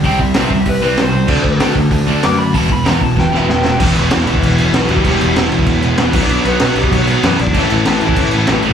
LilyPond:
<<
  \new Staff \with { instrumentName = "Lead electric guitar" } { \time 4/4 \key e \minor \tempo 4 = 192 << { g''8 e''4. b'8 b'8 c''4~ | c''4 r2 d'''8 b''8 | a''8 b''8 ais''8 a''8 g''8 e''8 g''8 g''8 | r1 |
r1 | r1 | r1 | } \\ { r1 | r1 | r2. <b b'>8. <d' d''>16 | <e e'>8 <e e'>4 <e e'>2 <g g'>8 |
<g g'>4 r2 <e e'>8. <d' d''>16~ | <d' d''>8 <b b'>4 <g g'>8 <fis fis'>8 <fis fis'>8 <e e'>8 <d' d''>8 | <e e'>4. <e e'>4 r8 <e e'>8. r16 | } >> }
  \new Staff \with { instrumentName = "Distorted electric guitar" } { \clef bass \time 4/4 \key e \minor <c g c'>2~ <c g c'>8 <c g c'>8 <c g c'>4 | <d a d'>2~ <d a d'>8 <d a d'>8 <d a d'>4 | <e, b, e>2~ <e, b, e>8 <e, b, e>8 <e, b, e>4 | <e, b, e>4. <e, b, e>2~ <e, b, e>8 |
<e, b, e>4. <e, b, e>2 <b, fis b>8~ | <b, fis b>4 <b, fis b>2~ <b, fis b>8 r8 | <a, e a>4. <a, e a>2~ <a, e a>8 | }
  \new Staff \with { instrumentName = "Distorted electric guitar" } { \clef bass \time 4/4 \key e \minor <c g c'>8 <c g>8 <c g c'>8 <c g>8 <c g>8 <c g c'>8 <c g>8 <c g>8 | <d a d'>8 <d a>8 <d a d'>8 <d a>8 <d a>8 <d a d'>8 <d a>8 <d a>8 | <e, b, e>8 <e, b,>8 <e, b, e>8 <e, b,>8 <e, b,>8 <e, b, e>8 <e, b,>8 <e, b,>8 | <e, b, e>2.~ <e, b, e>8 <e, b, e>8 |
<e, b, e>2.~ <e, b, e>8 <b, fis b>8~ | <b, fis b>2. <b, fis b>8 r8 | <a, e a>2.~ <a, e a>8 <a, e a>8 | }
  \new Staff \with { instrumentName = "Overdriven electric guitar" } { \clef bass \time 4/4 \key e \minor <c g c'>8 <c g>8 <c g c'>8 <c g>8 <c g>8 <c g c'>8 <c g>8 <c g>8 | <d a d'>8 <d a>8 <d a d'>8 <d a>8 <d a>8 <d a d'>8 <d a>8 <d a>8 | <e, b, e>8 <e, b,>8 <e, b, e>8 <e, b,>8 <e, b,>8 <e, b, e>8 <e, b,>8 <e, b,>8 | <e, b, e>2~ <e, b, e>8 <e, b, e>8 <e, b, e>4 |
<e, b, e>2~ <e, b, e>8 <e, b, e>8 <e, b, e>8 <b, fis b>8~ | <b, fis b>2 <b, fis b>8 <b, fis b>4 r8 | <a, e a>2~ <a, e a>8 <a, e a>8 <a, e a>4 | }
  \new Staff \with { instrumentName = "Picked electric bass" } { \clef bass \time 4/4 \key e \minor c,8 c,8 c,8 c,8 c,8 c,8 c,4 | d,8 d,8 d,8 d,8 d,8 d,8 fis,4 | e,,8 e,,8 e,,8 e,,8 e,,8 e,,8 e,,4 | e,,8 e,,8 e,8 e,,8 e,,4 b,,8 e,,8 |
e,,8 e,,8 e,,8 e,,8 e,,8 e,,8 e,,8 b,,8 | b,,8 b,,8 b,8 b,,8 b,,4 fis,8 b,,8 | a,,8 a,,8 a,,8 a,,8 a,,8 a,,8 a,,8 a,,8 | }
  \new DrumStaff \with { instrumentName = "Drums" } \drummode { \time 4/4 <hho bd>8 bd8 <hho sn>8 bd8 <hho bd>4 <hho sn>4 | <cymc bd>8 bd8 <hho sn>8 bd8 <hho bd>4 <hho sn>4 | <hho bd>8 bd8 <hho sn>8 bd8 <bd sn>8 sn8 sn8 sn8 | <cymc bd>8 cymc8 <cymc sn>8 cymc16 bd16 <cymc bd>8 cymc8 <cymc sn>8 cymc16 bd16 |
<cymc bd>8 cymc8 <cymc sn>8 cymc16 bd16 <cymc bd>8 cymc8 <cymc sn>8 <cymc bd>8 | cymc8 cymc8 <cymc sn>8 cymc16 bd16 <cymc bd>8 cymc8 <cymc sn>8 cymc16 bd16 | <cymc bd>8 cymc8 <cymc sn>8 cymc16 bd16 <cymc bd>8 cymc8 <cymc sn>8 cymc8 | }
>>